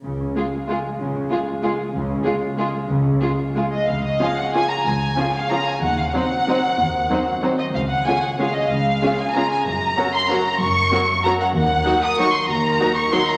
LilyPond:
<<
  \new Staff \with { instrumentName = "Violin section" } { \time 3/4 \key des \major \tempo 4 = 187 r4 aes'4 aes'4 | r4 aes'4 aes'4 | r4 aes'4 aes'4 | r4 aes'4 aes'8 ees''8 |
f''8 ees''8 f''8 ges''8 aes''8 bes''8 | aes''4. f''8 bes''8 aes''8 | ges''8 f''8 ges''2~ | ges''2 r8 ees''8 |
f''8 ges''8 aes''8 ges''8 f''8 ees''8 | f''4. aes''8 bes''8 aes''8 | bes''4. c'''8 bes''4 | des'''2 bes''8 ges''8 |
\key ees \dorian ges''4. ees'''8 des'''8 c'''8 | bes''4. des'''8 c'''8 bes''8 | }
  \new Staff \with { instrumentName = "Harp" } { \time 3/4 \key des \major des8 des'8 aes8 f'8 aes'8 aes8 | des8 des'8 aes8 f'8 aes'8 aes8 | des8 des'8 aes8 f'8 aes'8 aes8 | des8 des'8 aes8 f'8 aes'8 aes8 |
des8 des'8 aes'8 des''8 f''8 des''8 | des8 des'8 aes'8 des''8 f''8 des''8 | ees8 c'8 c''8 ges'8 ges''8 c''8 | ees8 c'8 c''8 ges'8 ges''8 c''8 |
des8 aes8 des''8 aes'8 aes''8 aes'8 | des8 aes8 des''8 aes'8 aes''8 aes'8 | ges,8 bes8 des''8 bes'8 ges''8 bes'8 | ges,8 bes8 des''8 bes'8 ges''8 bes'8 |
\key ees \dorian ees8 bes8 ees''8 bes'8 ges''8 bes'8 | ees8 bes8 ees''8 bes'8 ges''8 bes'8 | }
  \new Staff \with { instrumentName = "Violin section" } { \time 3/4 \key des \major r4 f'4 f'4 | r4 f'4 f'4 | r4 f'4 f'4 | r4 f'4 f'4 |
r4 <f' aes'>4 <f' aes'>4 | r4 <f' aes'>4 <f' aes'>4 | r4 <ees' c''>4 <ees' c''>4 | r4 <ees' c''>4 <ees' c''>4 |
r4 <f' aes'>4 <f' aes'>4 | r4 <f' aes'>4 <f' aes'>4 | r4 <ges' bes'>4 <ges' bes'>4 | r4 <ges' bes'>4 <ges' bes'>4 |
\key ees \dorian r4 <ges' bes'>4 <ges' bes'>4 | r4 <ges' bes'>4 <ges' bes'>4 | }
  \new Staff \with { instrumentName = "Viola section" } { \clef bass \time 3/4 \key des \major r4 aes4 aes4 | r4 aes4 aes4 | r4 aes4 aes4 | r4 aes4 aes4 |
r4 <f des'>4 <f des'>4 | r4 <f des'>4 <f des'>4 | r4 <ges c'>4 <ges c'>4 | r4 <ges c'>4 <ges c'>4 |
r4 <aes des'>4 <aes des'>4 | r4 <aes des'>4 <aes des'>4 | r4 <ges des'>4 <ges des'>4 | r4 <ges des'>4 <ges des'>4 |
\key ees \dorian r4 <ges ees'>4 <ges ees'>4 | r4 <ges ees'>4 <ges ees'>4 | }
  \new Staff \with { instrumentName = "Cello section" } { \clef bass \time 3/4 \key des \major des4 r2 | des4 r2 | des4 r2 | des4 r2 |
des,4 r2 | des,4 r2 | ees,4 r2 | ees,4 r2 |
des,4 r2 | des,4 r2 | ges,4 r2 | ges,4 r2 |
\key ees \dorian ees,4 r2 | ees,4 r2 | }
  \new Staff \with { instrumentName = "Double bass section" } { \clef bass \time 3/4 \key des \major des,4 r2 | des,4 r2 | des,4 r2 | des,4 r2 |
des,4 r2 | des,4 r2 | ees,4 r2 | ees,4 r2 |
des,4 r2 | des,4 r2 | ges,,4 r2 | ges,,4 r2 |
\key ees \dorian ees,4 r2 | ees,4 r2 | }
>>